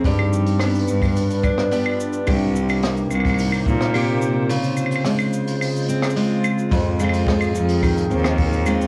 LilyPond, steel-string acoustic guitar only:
\new Staff \with { instrumentName = "Steel-string acoustic guitar" } { \time 4/4 \key f \minor \tempo 4 = 108 <g, g'>4 b4. d'8 <b d' g'>4 | <c g'>4 bes4. c'8 <bes c' g'>4 | <des f'>4 aes4. c'8 <aes c' f'>4 | f,8 <aes c' f'>8 aes4 ees8 c'4 <aes c' f'>8 | }